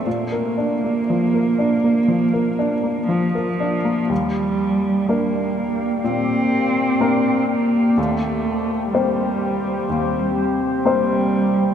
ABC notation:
X:1
M:4/4
L:1/16
Q:1/4=62
K:Eblyd
V:1 name="Ambient pad"
z16 | [B,Gd]16 | [CGc]16 |]
V:2 name="Upright piano"
B,, B D B, F, B D B, F, B D B, F, B D B, | E,,4 [B,DB]4 B,,4 [B,DB]4 | E,,4 [B,Cc]4 E,,4 [B,Cc]4 |]
V:3 name="Cello"
B,12 F,4 | G,4 B,4 C6 B,2 | A,4 G,6 z2 G,4 |]